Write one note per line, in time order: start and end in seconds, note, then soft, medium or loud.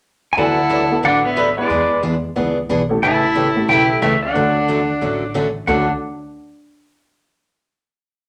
0.33 0.55 B3 medium
0.33 0.38 G#5 medium
0.37 0.90 D2 medium
0.37 0.58 D3 soft
0.37 0.58 F#3 medium
0.37 0.58 A3 medium
0.37 0.56 D4 medium
0.37 0.58 D4 medium
0.37 0.56 E4 medium
0.37 1.00 E4 medium
0.37 0.58 F#4 medium
0.37 0.56 F#4 medium
0.37 0.56 A4 medium
0.37 0.58 B4 medium
0.37 1.00 F#5 medium
0.37 1.00 A5 loud
0.69 0.81 D3 medium
0.69 0.81 F#3 medium
0.69 0.81 A3 medium
0.69 0.81 D4 medium
0.69 0.82 F#4 medium
0.69 0.82 B4 medium
0.90 1.02 B3 medium
0.90 1.02 D4 medium
0.90 1.02 E4 medium
0.90 1.03 F#4 medium
0.90 1.03 A4 medium
1.03 1.57 A1 medium
1.03 1.24 D3 medium
1.03 1.24 F#3 medium
1.03 1.24 A3 medium
1.03 1.24 D4 medium
1.03 1.26 D4 medium
1.03 1.24 F#4 medium
1.03 1.24 B4 medium
1.03 1.24 D5 medium
1.03 1.25 F#5 medium
1.25 1.58 B3 medium
1.25 1.56 C#5 medium
1.25 1.58 E5 medium
1.36 1.48 D3 medium
1.36 1.48 F#3 medium
1.36 1.48 A3 medium
1.36 1.48 D4 medium
1.36 1.48 F#4 medium
1.36 1.48 B4 medium
1.57 2.01 G#3 medium
1.57 1.69 B3 medium
1.57 1.69 D4 medium
1.57 1.69 E4 medium
1.57 1.69 G#4 medium
1.57 2.01 B4 medium
1.57 1.70 B4 medium
1.57 2.00 D5 medium
1.69 2.23 E2 medium
1.69 1.91 E3 medium
1.69 1.91 B3 medium
1.69 1.91 D4 medium
1.69 1.91 G#4 medium
2.03 2.14 E3 medium
2.03 2.14 B3 medium
2.03 2.14 D4 medium
2.03 2.14 G#4 medium
2.36 2.64 C#2 medium
2.36 2.57 E3 medium
2.36 2.54 B3 medium
2.36 2.57 B3 medium
2.36 2.55 D4 medium
2.36 2.57 D4 medium
2.36 2.55 E4 medium
2.36 2.57 G#4 medium
2.36 2.55 G#4 medium
2.36 2.55 B4 medium
2.69 2.98 B1 medium
2.69 2.81 E3 medium
2.69 2.81 B3 medium
2.69 2.81 D4 medium
2.69 2.81 G#4 medium
2.89 3.01 A3 medium
2.89 3.01 C#4 medium
2.89 3.01 E4 medium
2.89 3.02 G4 medium
2.89 3.02 A4 medium
3.03 3.56 A1 loud
3.03 3.23 C#3 medium
3.03 3.23 E3 medium
3.03 3.24 A3 medium
3.03 3.24 C#4 medium
3.03 3.65 E4 loud
3.03 3.24 G4 medium
3.03 3.66 E5 medium
3.03 3.69 A5 loud
3.35 3.46 C#3 medium
3.35 3.47 E3 medium
3.35 3.47 A3 medium
3.35 3.47 C#4 medium
3.35 3.47 G4 medium
3.55 3.99 A3 medium
3.55 3.99 C#4 medium
3.55 4.00 E4 medium
3.55 4.00 G4 medium
3.55 4.00 A4 medium
3.68 3.97 B1 medium
3.68 3.89 C#3 medium
3.68 3.90 E3 medium
3.68 3.90 A3 medium
3.68 3.90 C#4 medium
3.68 4.00 E4 medium
3.68 3.90 G4 medium
3.68 4.00 E5 medium
3.68 4.03 G5 medium
4.02 4.30 C#2 medium
4.02 4.13 C#3 medium
4.02 4.13 E3 medium
4.02 4.21 A3 medium
4.02 4.13 A3 medium
4.02 4.13 C#4 medium
4.02 4.14 G4 medium
4.02 4.21 C#5 medium
4.02 4.22 E5 medium
4.23 5.32 D4 medium
4.23 5.31 D5 medium
4.23 5.31 F#5 medium
4.34 4.89 D2 loud
4.34 4.56 D3 medium
4.34 4.56 F#3 medium
4.34 4.84 A3 medium
4.34 4.56 A3 medium
4.34 4.56 C#4 medium
4.34 4.85 D4 medium
4.34 4.85 F#4 medium
4.34 4.57 F#4 medium
4.34 4.85 A4 medium
4.68 4.80 D3 medium
4.68 4.80 F#3 medium
4.68 4.80 A3 medium
4.68 4.80 C#4 medium
4.68 4.80 F#4 medium
5.01 5.55 A1 medium
5.01 5.22 D3 medium
5.01 5.23 F#3 medium
5.01 5.23 A3 medium
5.01 5.23 C#4 medium
5.01 5.23 F#4 medium
5.34 5.46 D3 medium
5.34 5.46 F#3 medium
5.34 5.46 A3 medium
5.34 5.46 C#4 medium
5.34 5.46 F#4 medium
5.67 5.87 D2 loud
5.67 5.84 D3 medium
5.67 5.84 F#3 medium
5.67 5.86 A3 medium
5.67 5.85 A3 medium
5.67 5.87 C#4 medium
5.67 5.85 C#4 medium
5.67 5.87 D4 medium
5.67 5.88 D4 medium
5.67 5.87 F#4 medium
5.67 5.85 F#4 medium
5.67 5.87 A4 medium
5.67 5.87 F#5 medium